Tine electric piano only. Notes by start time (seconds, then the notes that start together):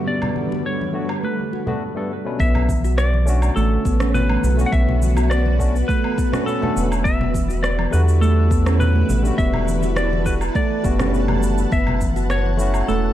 Already playing: G2 D3 A3 B3 F#4
0.93 G2 A3 B3 D4 F#4
1.66 G2 A3 B3 D4 F#4
1.95 G2 A3 B3 D4 A4
2.25 B2 A3 C#4 D4 B4
3.25 D3 A3 C#4
3.29 F#4
4.57 D3 A3 C#4 F#4
5.59 A3 C#4 D4 F#4
6.32 A3 C#4 D4 F#4
6.62 D3 A3 C#4 A4
7.91 D3 G3 A3 F#4
9.23 D3 G3 A3
9.27 F#4
10.26 G3 A3 D4 F#4
10.83 G3 A3 D4 F#4
10.98 D3 G3 A3
11.02 F#4
12.57 A3 C#4 E4 F#4